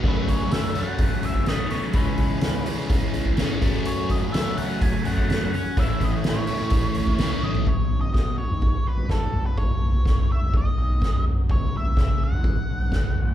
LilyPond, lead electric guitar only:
\new Staff \with { instrumentName = "Lead electric guitar" } { \time 4/4 \key fis \dorian \tempo 4 = 126 b'8 cis''8 e''8 fis''4 e''8 dis''8 cis''8 | b'4. r2 r8 | cis''8 dis''8 e''8 fis''8 gis''8 fis''4 fis''8 | e''8 dis''8 cis''2~ cis''8 dis''8 |
cis''8. dis''16 dis''8 cis''4 b'8 a'8. b'16 | cis''4. e''8 dis''4. r8 | cis''8 e''8 e''8 fis''2~ fis''8 | }